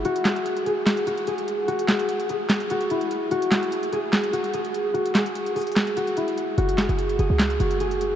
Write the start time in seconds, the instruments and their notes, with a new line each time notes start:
Already playing: harp E4 G#4
0.05 harp F#4, closed hi-hat
0.16 closed hi-hat
0.25 harp G#4, snare, clap, closed hi-hat
0.36 closed hi-hat
0.46 closed hi-hat
0.56 closed hi-hat
0.66 harp G#4, closed hi-hat
0.86 snare, clap, closed hi-hat
0.97 closed hi-hat
1.07 harp F#4, closed hi-hat
1.18 closed hi-hat
1.27 harp G#4, closed hi-hat
1.38 closed hi-hat
1.48 closed hi-hat
1.68 harp F#4, closed hi-hat
1.79 closed hi-hat
1.88 harp G#4, snare, clap, closed hi-hat
1.99 closed hi-hat
2.09 closed hi-hat
2.20 closed hi-hat
2.29 harp G#4, closed hi-hat
2.50 snare, clap, closed hi-hat
2.60 closed hi-hat
2.70 harp F#4, closed hi-hat
2.81 closed hi-hat
2.90 harp E4, closed hi-hat
3.01 closed hi-hat
3.11 closed hi-hat
3.31 harp F#4, closed hi-hat
3.42 closed hi-hat
3.51 harp G#4, snare, clap, closed hi-hat
3.63 closed hi-hat
3.72 closed hi-hat
3.83 closed hi-hat
3.93 harp G#4, closed hi-hat
4.13 snare, clap, closed hi-hat
4.24 closed hi-hat
4.33 harp F#4, closed hi-hat
4.44 closed hi-hat
4.54 harp G#4, closed hi-hat
4.65 closed hi-hat
4.74 closed hi-hat
4.94 harp F#4, closed hi-hat
5.06 closed hi-hat
5.15 harp G#4, snare, clap, closed hi-hat
5.26 closed hi-hat
5.35 closed hi-hat
5.46 closed hi-hat
5.55 harp G#4, closed hi-hat, open hi-hat
5.61 closed hi-hat
5.67 closed hi-hat
5.72 closed hi-hat
5.76 snare, clap, closed hi-hat
5.87 closed hi-hat
5.97 harp F#4, closed hi-hat
6.07 closed hi-hat
6.17 harp E4, closed hi-hat
6.28 closed hi-hat
6.38 closed hi-hat
6.58 808-style bass F#1, harp F#4, closed hi-hat
6.69 closed hi-hat
6.78 harp G#4, snare, clap, closed hi-hat
6.89 808-style bass F#1, closed hi-hat
6.99 closed hi-hat
7.09 closed hi-hat
7.19 808-style bass F#1, harp G#4, closed hi-hat
7.30 808-style bass C#2
7.39 snare, clap, closed hi-hat
7.50 closed hi-hat
7.60 808-style bass F#1, harp F#4, closed hi-hat
7.71 closed hi-hat
7.80 harp G#4, closed hi-hat
7.91 closed hi-hat
8.01 closed hi-hat